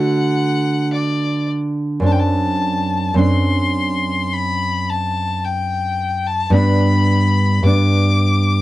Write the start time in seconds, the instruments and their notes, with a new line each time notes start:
Already playing: nylon-string guitar D3 A3 F#4, violin F#5
0.94 violin D5
2.00 nylon-string guitar F#2 C4 D4
2.06 violin A5
2.12 violin G5
2.19 violin A5
3.14 nylon-string guitar F#2 C4 D4
3.19 violin C6
4.33 violin B5
4.90 violin A5
5.44 violin G5
6.27 violin A5
6.50 nylon-string guitar G2 B3 D4
6.54 violin B5
7.63 nylon-string guitar G2 B3, violin D6
7.67 nylon-string guitar D4